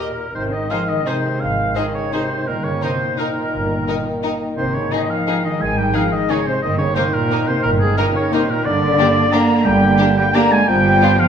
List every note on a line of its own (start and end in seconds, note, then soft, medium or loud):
0.00 0.33 A#2 soft
0.00 0.13 D#3 medium
0.00 0.14 G4 soft
0.00 0.13 A#4 soft
0.00 0.33 A#4 soft
0.34 0.65 G#1 soft
0.34 0.52 C3 medium
0.34 1.03 D#3 soft
0.34 2.44 G#3 soft
0.34 2.44 D#4 soft
0.34 1.03 D#4 soft
0.34 0.43 C5 medium
0.34 0.52 C5 medium
0.52 0.71 D#3 medium
0.52 0.72 D#5 medium
0.52 0.71 D#5 soft
0.70 0.89 F3 medium
0.70 0.79 D#4 soft
0.70 0.78 G#4 soft
0.70 0.79 C5 soft
0.70 0.90 F5 medium
0.70 0.77 F5 medium
0.89 1.07 D#3 medium
0.89 1.08 D#5 medium
0.89 1.06 D#5 medium
1.06 1.41 C3 medium
1.06 1.75 D#3 soft
1.06 1.75 D#4 soft
1.06 1.16 D#4 soft
1.06 1.15 G#4 soft
1.06 1.41 C5 medium
1.06 1.15 C5 soft
1.06 1.42 C5 medium
1.41 1.71 G#1 soft
1.41 1.77 F3 medium
1.41 1.77 F5 medium
1.41 1.76 F5 medium
1.76 2.13 D#3 soft
1.76 1.96 D#3 medium
1.76 2.13 D#4 soft
1.76 1.84 D#4 soft
1.76 1.84 G#4 soft
1.76 1.84 C5 soft
1.76 1.94 D#5 medium
1.76 1.82 D#5 soft
1.94 2.14 C#3 medium
1.94 2.15 C#5 medium
1.94 2.13 C#5 soft
2.13 2.49 C3 medium
2.13 2.47 D#3 soft
2.13 2.47 D#4 soft
2.13 2.22 D#4 soft
2.13 2.21 G#4 soft
2.13 2.21 C5 soft
2.13 2.49 C5 medium
2.47 2.77 G1 soft
2.47 2.55 A#2 medium
2.47 3.18 D#3 soft
2.47 5.28 A#3 soft
2.47 3.18 D#4 soft
2.47 4.54 D#4 soft
2.47 2.65 A#4 medium
2.47 2.55 A#4 medium
2.64 2.83 C#3 medium
2.64 2.84 C#5 medium
2.64 2.72 C#5 medium
2.82 3.20 C3 soft
2.82 2.91 D#4 soft
2.82 2.90 A#4 soft
2.82 3.20 C5 medium
2.82 3.19 C5 soft
3.18 4.05 A#2 medium
3.18 4.55 D#3 medium
3.18 4.55 D#4 soft
3.18 3.28 D#4 soft
3.18 4.06 A#4 medium
3.18 3.27 A#4 soft
3.18 4.07 A#4 medium
3.54 3.82 G1 medium
3.88 3.96 D#4 soft
3.88 3.97 D#4 soft
3.88 3.96 A#4 soft
4.24 4.32 D#4 soft
4.24 4.32 A#4 soft
4.57 4.86 G#1 medium
4.57 4.74 C3 medium
4.57 4.92 D#3 soft
4.57 4.91 D#4 soft
4.57 6.60 D#4 soft
4.57 4.76 C5 medium
4.57 4.64 C5 medium
4.74 4.92 C#3 medium
4.74 4.93 C#5 medium
4.92 5.10 D#3 medium
4.92 5.60 D#3 medium
4.92 5.00 D#4 soft
4.92 5.60 D#4 soft
4.92 5.01 D#4 soft
4.92 5.00 G#4 soft
4.92 5.11 D#5 medium
4.92 5.10 D#5 medium
5.09 5.45 F3 medium
5.09 5.44 F5 medium
5.09 5.45 F5 medium
5.27 6.64 G#3 medium
5.27 5.36 D#4 soft
5.27 5.37 D#4 soft
5.27 5.36 G#4 soft
5.45 5.61 D#3 medium
5.45 5.63 D#5 medium
5.45 5.51 D#5 medium
5.61 5.89 G#1 medium
5.61 6.38 D#3 medium
5.61 5.77 G#3 medium
5.61 6.38 D#4 soft
5.61 5.77 G#5 medium
5.61 5.79 G#5 medium
5.77 5.95 G3 medium
5.77 5.95 G5 medium
5.77 5.97 G5 medium
5.94 6.13 F3 medium
5.94 6.03 D#4 soft
5.94 6.02 G#4 soft
5.94 6.13 F5 medium
5.94 6.11 F5 medium
6.11 6.30 D#3 medium
6.11 6.32 D#5 medium
6.11 6.31 D#5 medium
6.30 6.47 C#3 medium
6.30 6.38 D#4 soft
6.30 6.38 G#4 soft
6.30 6.48 C#5 medium
6.47 6.63 C3 medium
6.47 6.61 C5 medium
6.47 6.64 C5 medium
6.62 6.91 G1 medium
6.62 6.79 D#3 medium
6.62 7.60 D#3 medium
6.62 8.49 A#3 medium
6.62 8.49 D#4 medium
6.62 7.60 D#4 medium
6.62 6.77 D#5 medium
6.62 6.69 D#5 medium
6.78 6.96 C#3 medium
6.78 6.97 C#5 medium
6.78 6.96 C#5 medium
6.95 7.14 C3 medium
6.95 7.04 A#3 soft
6.95 7.04 D#4 soft
6.95 7.04 A#4 medium
6.95 7.15 C5 medium
6.95 7.02 C5 medium
7.13 7.47 A#2 medium
7.13 7.48 A#4 medium
7.13 7.47 A#4 medium
7.31 7.39 A#3 medium
7.31 7.39 D#4 medium
7.31 7.39 A#4 medium
7.47 7.64 C3 medium
7.47 7.62 C5 medium
7.47 7.64 C5 medium
7.63 7.92 G1 medium
7.63 7.80 A#2 medium
7.63 7.97 D#3 medium
7.63 7.97 D#4 medium
7.63 7.70 A#4 medium
7.63 7.81 A#4 medium
7.80 7.98 G#2 medium
7.80 7.97 G#4 medium
7.80 7.98 G#4 medium
7.97 8.15 A#2 medium
7.97 8.67 D#3 medium
7.97 8.06 A#3 medium
7.97 8.06 D#4 soft
7.97 8.68 D#4 medium
7.97 8.05 A#4 medium
7.97 8.06 A#4 medium
7.97 8.16 A#4 medium
8.15 8.33 C#3 medium
8.15 8.35 C#5 medium
8.15 8.33 C#5 medium
8.32 8.50 C3 medium
8.32 8.41 A#3 medium
8.32 8.41 D#4 medium
8.32 8.40 A#4 medium
8.32 8.50 C5 medium
8.32 8.52 C5 medium
8.50 8.66 A#2 medium
8.50 8.65 A#4 medium
8.50 8.67 A#4 medium
8.65 8.93 G1 medium
8.65 9.32 D3 medium
8.65 9.33 D3 medium
8.65 9.33 A#3 medium
8.65 10.65 A#3 medium
8.65 10.65 D4 medium
8.65 9.34 D5 medium
8.65 9.33 D5 medium
8.98 9.07 A#3 medium
8.98 9.07 D4 medium
8.98 9.06 G4 medium
9.32 9.65 D3 medium
9.32 9.65 A#3 medium
9.32 9.42 A#3 medium
9.32 9.41 D4 medium
9.32 9.40 G4 medium
9.32 9.64 A#5 medium
9.32 9.66 A#5 medium
9.65 9.94 G1 medium
9.65 10.34 D3 medium
9.65 10.16 G3 medium
9.65 10.34 A#3 medium
9.65 10.16 G5 medium
9.65 9.94 G5 medium
9.99 10.08 A#3 medium
9.99 10.07 D4 medium
9.99 10.07 G4 medium
10.17 10.25 G3 medium
10.17 10.36 G5 loud
10.17 10.35 G5 medium
10.34 10.70 D3 medium
10.34 10.52 A#3 medium
10.34 10.70 A#3 medium
10.34 10.43 A#3 medium
10.34 10.43 D4 medium
10.34 10.42 G4 medium
10.34 10.53 A#5 loud
10.34 10.53 A#5 medium
10.51 10.69 G#3 medium
10.51 10.69 G#5 loud
10.51 10.69 G#5 medium
10.68 10.96 G1 medium
10.68 11.28 F3 medium
10.68 11.19 G3 medium
10.68 11.28 B3 medium
10.68 11.28 F4 medium
10.68 11.21 G5 loud
10.68 11.21 G5 medium
11.02 11.10 B3 medium
11.02 11.10 D4 medium
11.02 11.10 F4 medium
11.20 11.28 F3 medium
11.20 11.28 F5 loud
11.20 11.28 F5 medium